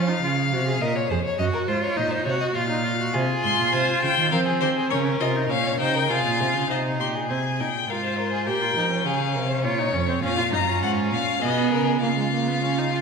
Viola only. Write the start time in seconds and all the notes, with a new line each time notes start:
0.09 D#4
0.24 F4
0.53 F#4
0.68 G#4
0.82 A#4
1.11 G#4
1.39 F#4
1.68 F4
1.97 D#4
2.26 F#4
2.55 F4
2.70 D#4
2.84 F4
2.99 F#4
3.14 F4
4.31 C4
4.91 C#4
5.20 F4
5.36 D#4
5.50 C#4
5.80 D#4
6.10 F4
6.70 D#4
7.30 C4
7.60 D#4
7.89 F4
8.47 G4
8.62 F4
8.76 D#4
8.91 C#4
9.65 F4
9.79 D#4
9.94 C#4
10.08 C4
10.23 C#4
10.37 F4
10.52 D#4
10.67 C#4
11.41 B3
12.02 A#3
12.18 G#3
12.33 A#3
12.48 B3
12.63 C#4
12.78 D#4
12.93 F4